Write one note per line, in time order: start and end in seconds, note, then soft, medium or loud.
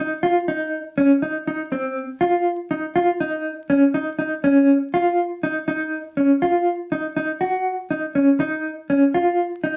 0.00 0.13 D#4 medium
0.23 0.38 F4 medium
0.48 0.78 D#4 medium
0.98 1.12 C#4 medium
1.22 1.37 D#4 medium
1.47 1.62 D#4 medium
1.72 2.02 C4 medium
2.21 2.51 F4 medium
2.71 2.86 D#4 medium
2.96 3.10 F4 medium
3.20 3.50 D#4 medium
3.70 3.85 C#4 medium
3.94 4.09 D#4 medium
4.19 4.34 D#4 medium
4.44 4.74 C#4 medium
4.94 5.23 F4 medium
5.43 5.58 D#4 medium
5.68 5.98 D#4 medium
6.17 6.32 C#4 medium
6.42 6.72 F4 medium
6.92 7.07 D#4 medium
7.16 7.31 D#4 medium
7.41 7.71 F#4 medium
7.91 8.05 D#4 medium
8.15 8.30 C#4 medium
8.40 8.70 D#4 medium
8.90 9.04 C#4 medium
9.14 9.44 F4 medium
9.64 9.77 D#4 medium